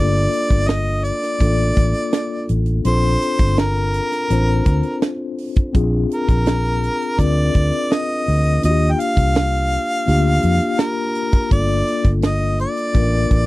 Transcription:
Already playing: fingered electric bass G1, tine electric piano A#3 D4 F4 A4, vibraphone G4 C5, harmonica D5
0.33 closed hi-hat
0.50 fingered electric bass G1, kick, closed hi-hat
0.68 harmonica D#5, snare, closed hi-hat
1.04 harmonica D5, closed hi-hat
1.23 snare, closed hi-hat
1.39 fingered electric bass A1, tine electric piano A#3 D4 F4 A4, kick, closed hi-hat
1.59 closed hi-hat
1.77 fingered electric bass A1, kick, closed hi-hat
1.94 closed hi-hat
2.13 snare, closed hi-hat
2.49 fingered electric bass A1, closed hi-hat
2.66 closed hi-hat
2.84 fingered electric bass A#1, tine electric piano C4 D4 F4 A4, harmonica C5, closed hi-hat
3.22 closed hi-hat
3.39 fingered electric bass G1, kick, closed hi-hat
3.57 harmonica A#4, snare, closed hi-hat
3.76 closed hi-hat
3.94 closed hi-hat
4.12 snare, closed hi-hat
4.30 fingered electric bass A1, tine electric piano C4 D4 F4 C5, closed hi-hat
4.48 closed hi-hat
4.66 fingered electric bass D2, kick, closed hi-hat
4.83 closed hi-hat
5.02 snare, closed hi-hat
5.38 open hi-hat
5.56 kick, closed hi-hat
5.73 fingered electric bass A#1, tine electric piano C4 D4 F4 G#4, kick, closed hi-hat
6.12 harmonica A#4, closed hi-hat
6.29 fingered electric bass A#1, kick, closed hi-hat
6.46 snare, closed hi-hat
6.65 closed hi-hat
6.83 closed hi-hat
7.02 closed hi-hat
7.18 fingered electric bass D2, tine electric piano C4 D4 F4 A#4, harmonica D5, kick, closed hi-hat
7.55 fingered electric bass D2, kick, closed hi-hat
7.72 closed hi-hat
7.91 harmonica D#5, snare, closed hi-hat
8.28 fingered electric bass D2, open hi-hat
8.45 closed hi-hat
8.62 fingered electric bass D#2, tine electric piano A#3 D4 F4 F#4, harmonica D#5, closed hi-hat
8.71 tine electric piano G4
8.92 harmonica G5
9.00 harmonica F5, closed hi-hat
9.17 fingered electric bass C2, kick, closed hi-hat
9.35 snare, closed hi-hat
9.54 closed hi-hat
9.72 closed hi-hat
9.90 closed hi-hat
10.06 fingered electric bass D2, tine electric piano A#3 D4 F4 G4, closed hi-hat
10.43 fingered electric bass F2, closed hi-hat
10.60 closed hi-hat
10.79 harmonica A#4, snare, closed hi-hat
11.15 closed hi-hat
11.32 kick, closed hi-hat
11.51 fingered electric bass G1, tine electric piano A#3 D4 F4 A4, harmonica D5, kick, closed hi-hat
11.68 closed hi-hat
11.87 closed hi-hat
12.04 fingered electric bass G1, kick, closed hi-hat
12.22 harmonica D#5, snare, closed hi-hat
12.59 harmonica D5, closed hi-hat
12.77 closed hi-hat
12.94 fingered electric bass A1, tine electric piano A#3 D4 F4 A#4, kick, closed hi-hat
13.31 fingered electric bass A1, kick, closed hi-hat

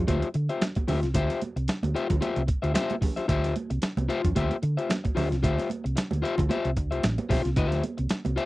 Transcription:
0.08 fingered electric bass D2, clean electric guitar F4 G4 C5 E5, kick, closed hi-hat, muted conga, high conga
0.22 closed hi-hat, muted conga
0.34 fingered electric bass D3, muted clean electric guitar stroke, closed hi-hat
0.49 clean electric guitar F4 G4 C5 E5, closed hi-hat
0.61 snare, closed hi-hat, high conga
0.75 muted clean electric guitar stroke, kick, closed hi-hat, muted conga, high conga
0.88 fingered electric bass D2, clean electric guitar F4 G4 C5 E5, open hi-hat, high conga, low conga
1.02 fingered electric bass C2, muted clean electric guitar stroke, snare, closed hi-hat
1.14 fingered electric bass D2, clean electric guitar F4 G4 C5 E5, kick, closed hi-hat, muted conga
1.30 snare, closed hi-hat
1.42 closed hi-hat, high conga
1.56 fingered electric bass C2, muted clean electric guitar stroke, closed hi-hat
1.68 muted clean electric guitar stroke, snare, closed hi-hat, muted conga
1.83 fingered electric bass D2, muted clean electric guitar stroke, closed hi-hat, muted conga, high conga
1.95 clean electric guitar F4 G4 C5 E5, closed hi-hat
2.10 fingered electric bass D2, muted clean electric guitar stroke, kick, closed hi-hat, low conga
2.21 clean electric guitar F4 G4 C5 E5, closed hi-hat, muted conga, high conga
2.36 fingered electric bass C2, closed hi-hat, muted conga
2.47 muted clean electric guitar stroke, kick, closed hi-hat
2.62 fingered electric bass D2, clean electric guitar F4 G4 C5 E5, closed hi-hat
2.74 clean electric guitar F4 G4 C5 E5, snare, closed hi-hat, muted conga, high conga
2.90 closed hi-hat, muted conga, high conga
3.01 muted clean electric guitar stroke, kick, open hi-hat, high conga, low conga
3.16 clean electric guitar F4 G4 C5 E5, snare, closed hi-hat
3.28 fingered electric bass D2, clean electric guitar F4 G4 C5 E5, kick, closed hi-hat, muted conga
3.44 snare, closed hi-hat, muted conga
3.56 closed hi-hat, high conga
3.70 fingered electric bass C2, muted clean electric guitar stroke, closed hi-hat
3.82 muted clean electric guitar stroke, snare, closed hi-hat, muted conga
3.97 fingered electric bass C2, muted clean electric guitar stroke, closed hi-hat, muted conga, high conga
4.09 clean electric guitar F4 G4 C5 E5, closed hi-hat
4.24 fingered electric bass F2, muted clean electric guitar stroke, kick, closed hi-hat, low conga
4.35 fingered electric bass D2, clean electric guitar F4 G4 C5 E5, kick, closed hi-hat, muted conga, high conga
4.51 closed hi-hat, muted conga
4.62 fingered electric bass D3, muted clean electric guitar stroke, closed hi-hat
4.77 clean electric guitar F4 G4 C5 E5, closed hi-hat
4.90 snare, closed hi-hat, muted conga, high conga
5.04 muted clean electric guitar stroke, kick, closed hi-hat, high conga
5.15 fingered electric bass D2, clean electric guitar F4 G4 C5 E5, open hi-hat, high conga, low conga
5.31 fingered electric bass C2, muted clean electric guitar stroke, snare, closed hi-hat
5.43 fingered electric bass D2, clean electric guitar F4 G4 C5 E5, kick, closed hi-hat, muted conga
5.59 snare, closed hi-hat, muted conga
5.70 closed hi-hat, high conga
5.84 fingered electric bass C2, muted clean electric guitar stroke, closed hi-hat
5.96 muted clean electric guitar stroke, muted fingered electric bass stroke, snare, closed hi-hat, muted conga
6.11 fingered electric bass D2, muted clean electric guitar stroke, closed hi-hat, muted conga, high conga
6.22 clean electric guitar F4 G4 C5 E5, closed hi-hat
6.38 fingered electric bass D2, muted clean electric guitar stroke, kick, closed hi-hat, low conga
6.49 clean electric guitar F4 G4 C5 E5, closed hi-hat, high conga
6.65 fingered electric bass C2, closed hi-hat
6.77 fingered electric bass D2, muted clean electric guitar stroke, kick, closed hi-hat
6.91 fingered electric bass C2, clean electric guitar F4 G4 C5 E5, closed hi-hat
7.03 fingered electric bass A1, snare, closed hi-hat, muted conga, high conga
7.18 muted clean electric guitar stroke, closed hi-hat, high conga
7.29 fingered electric bass B1, clean electric guitar F4 G4 C5 E5, kick, open hi-hat, high conga, low conga
7.44 fingered electric bass C2, muted clean electric guitar stroke, snare, closed hi-hat
7.56 fingered electric bass D2, clean electric guitar E4 G4 C5 E5, kick, closed hi-hat, muted conga
7.67 clean electric guitar F4
7.72 snare, closed hi-hat, muted conga
7.84 closed hi-hat, high conga
7.98 fingered electric bass C2, muted clean electric guitar stroke, closed hi-hat
8.09 muted clean electric guitar stroke, snare, closed hi-hat, muted conga
8.25 fingered electric bass C2, muted clean electric guitar stroke, closed hi-hat, high conga
8.36 clean electric guitar F4 G4 C5 E5, closed hi-hat

